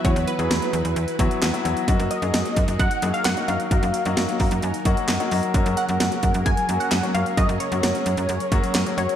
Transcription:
Already playing: string machine E3 E4 F#4 B4
0.04 fm bass E2, grand piano F#3 B3 E4 F#4, analog polysynth C#5, kick, closed hi-hat
0.16 fm bass E2, closed hi-hat
0.27 analog polysynth B4, closed hi-hat
0.39 fm bass E2, grand piano F#3 B3 E4 G#4, closed hi-hat
0.51 fm bass E2, snare, closed hi-hat
0.62 closed hi-hat
0.73 fm bass E2, closed hi-hat
0.85 fm bass E2, closed hi-hat
0.96 fm bass E2, closed hi-hat
1.08 closed hi-hat
1.19 fm bass E2, grand piano F#3 B3 E4 F#4, kick, closed hi-hat
1.31 closed hi-hat
1.42 fm bass E2, snare, clap, closed hi-hat
1.53 grand piano F#3 B3 E4 F#4, closed hi-hat
1.65 fm bass E2, grand piano F#3 B3 E4 F#4, closed hi-hat
1.77 closed hi-hat
1.88 fm bass F#2, grand piano F#3 A#3 D#4 F#4, string machine F#3 D#4 F#4 A#4, kick, closed hi-hat
1.99 fm bass F#2, closed hi-hat
2.11 analog polysynth D#5, closed hi-hat
2.22 fm bass F#2, grand piano F#3 A#3 D#4 G#4, closed hi-hat
2.34 fm bass F#2, snare, closed hi-hat
2.45 closed hi-hat
2.56 fm bass F#2, kick, closed hi-hat
2.68 fm bass F#2, closed hi-hat
2.79 fm bass F#2, analog polysynth F#5, kick, closed hi-hat
2.91 closed hi-hat
3.02 fm bass F#2, grand piano F#3 A#3 D#4 G#4, closed hi-hat
3.14 analog polysynth F5, closed hi-hat
3.25 fm bass F#2, analog polysynth F#5, snare, clap, closed hi-hat
3.37 grand piano F#3 A#3 D#4 F#4, closed hi-hat
3.48 fm bass F#2, grand piano F#3 A#3 D#4 F#4, analog polysynth F5, closed hi-hat
3.60 closed hi-hat
3.71 fm bass F#2, grand piano F#3 A#3 D#4 F#4, string machine F#4, kick, closed hi-hat
3.83 fm bass F#2, closed hi-hat
3.94 closed hi-hat
4.05 fm bass F#2, grand piano F#3 A#3 D#4 F#4, closed hi-hat
4.17 fm bass F#2, snare, closed hi-hat
4.29 closed hi-hat
4.40 fm bass F#2, grand piano A#5, kick, open hi-hat
4.51 fm bass F#2, closed hi-hat
4.62 fm bass F#2, grand piano G#5, closed hi-hat
4.74 closed hi-hat
4.85 fm bass F#2, grand piano F#3 A#3 D#4 F#4 F#5, kick, closed hi-hat
4.97 closed hi-hat
5.08 fm bass F#2, grand piano F#5, snare, clap, closed hi-hat
5.20 grand piano F#3 A#3 D#4 F#4, closed hi-hat
5.31 fm bass F#2, grand piano F#3 A#3 D#4 F#4 D#5, open hi-hat
5.43 closed hi-hat
5.54 fm bass F#2, grand piano F#3 A#3 C#4 F#4, string machine C#4 G#4, kick, closed hi-hat
5.66 fm bass F#2, closed hi-hat
5.77 analog polysynth F#5, closed hi-hat
5.89 fm bass F#2, grand piano F#3 A#3 C#4 F#4, closed hi-hat
6.00 fm bass F#2, snare, closed hi-hat
6.12 closed hi-hat
6.23 fm bass F#2, kick, closed hi-hat
6.34 fm bass F#2, closed hi-hat
6.46 fm bass F#2, analog polysynth G#5, kick, closed hi-hat
6.57 closed hi-hat
6.69 fm bass F#2, grand piano F#3 A#3 C#4 F#4, closed hi-hat
6.80 analog polysynth F#5, closed hi-hat
6.91 fm bass F#2, snare, clap, closed hi-hat
7.03 grand piano F#3 A#3 C#4 F#4, closed hi-hat
7.14 fm bass F#2, grand piano F#3 A#3 C#4 F#4, analog polysynth F5, closed hi-hat
7.26 closed hi-hat
7.37 fm bass F#2, grand piano F#3 A#3 C#4 F#4, analog polysynth D#5, kick, closed hi-hat
7.49 fm bass F#2, closed hi-hat
7.60 analog polysynth C#5, closed hi-hat
7.72 fm bass F#2, grand piano F#3 A#3 C#4 F#4, closed hi-hat
7.83 fm bass F#2, snare, closed hi-hat
7.95 closed hi-hat
8.06 fm bass F#2, closed hi-hat
8.17 fm bass F#2, closed hi-hat
8.29 fm bass F#2, closed hi-hat
8.40 closed hi-hat
8.52 fm bass F#2, grand piano F#3 A#3 C#4 F#4, kick, closed hi-hat
8.64 closed hi-hat
8.75 fm bass F#2, snare, clap, closed hi-hat
8.86 grand piano F#3 A#3 C#4 F#4, closed hi-hat
8.98 fm bass F#2, grand piano F#3 A#3 C#4 F#4, analog polysynth C#5, closed hi-hat
9.09 closed hi-hat

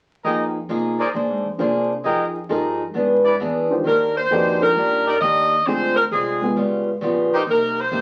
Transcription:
0.24 upright bass F2, steel-string acoustic guitar F3 A#3 D#4 G#4, trumpet section G4 G#4 A#4 D#5
0.69 upright bass C3, steel-string acoustic guitar F3 A#3 D#4 G#4
0.99 trumpet section G#4 A#4 C5 D5, muted upright bass stroke
1.14 upright bass A#2, steel-string acoustic guitar A#3 D4 G#4 C5
1.30 upright bass G#2
1.45 upright bass F2
1.58 upright bass C3, steel-string acoustic guitar A#3 D4 G#4 C5, grand piano D4 F4 G#4 C5
2.04 upright bass F2, steel-string acoustic guitar F3 D#4 G#4 A#4, trumpet section G4 G#4 A#4 D#5
2.49 upright bass G2, steel-string acoustic guitar F3 D#4 G#4 A#4, grand piano D#4 G4 G#4 A#4
2.94 upright bass G#2, steel-string acoustic guitar E3 B3 D4 G#4
3.25 trumpet section E4 G#4 B4 D5
3.40 upright bass E2, steel-string acoustic guitar E3 B3 D4 G#4
3.70 grand piano D#3 D4 F4 G4 C5
3.84 upright bass D#2, steel-string acoustic guitar D#3 A#3 D4 G4, saxophone section A#4
4.17 saxophone section C5
4.30 upright bass F2, steel-string acoustic guitar D#3 A#3 D4 G4, grand piano D#4 F#4 G#4 B4
4.61 grand piano D4 F4 G4 A#4, saxophone section A#4
4.76 upright bass G2, steel-string acoustic guitar D#3 A#3 D4 G4
5.06 trumpet section D#4 G4 A#4 D5
5.21 upright bass D#2, steel-string acoustic guitar D#3 A#3 D4 G4, saxophone section D#5
5.66 upright bass D2, steel-string acoustic guitar D3 G#3 C4 F4, grand piano C4 D4 F4 G#4, saxophone section C5
5.96 saxophone section A#4
6.11 upright bass C2, steel-string acoustic guitar D3 G#3 C4 F4, saxophone section G#4
6.41 grand piano G#3 B3 F4 G#4
6.56 upright bass C#2, steel-string acoustic guitar C#3 G3 B3 F4
7.01 upright bass A#1, steel-string acoustic guitar C#3 G3 B3 F4
7.32 trumpet section D#4 G4 A#4 C5
7.47 upright bass C2, steel-string acoustic guitar C3 A#3 D#4 G4, saxophone section A#4
7.80 saxophone section C5
7.91 upright bass G#1, steel-string acoustic guitar C3 A#3 D#4 G4

